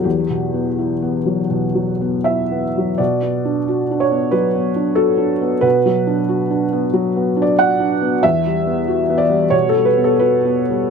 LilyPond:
<<
  \new Staff \with { instrumentName = "Felt piano" } { \time 4/4 \key b \minor \tempo 4 = 91 g'2. e''4 | d''4. cis''8 b'4 a'4 | b'2~ b'8. d''16 fis''4 | e''4. d''8 cis''16 a'16 b'16 a'16 b'4 | }
  \new Staff \with { instrumentName = "Felt piano" } { \time 4/4 \key b \minor \tuplet 3/2 { <e, fis>8 b,8 b8 e'8 b8 fis8 b,8 fis8 b8 e'8 b8 fis8 } | \tuplet 3/2 { b,8 b8 d'8 fis'8 d'8 b8 fis8 b8 d'8 fis'8 d'8 b8 } | \tuplet 3/2 { b,8 fis8 d'8 fis'8 d'8 b8 fis8 b8 d'8 fis'8 d'8 b8 } | \tuplet 3/2 { e,8 g8 b8 fis'8 b8 g8 b,8 g8 b8 fis'8 b8 g8 } | }
>>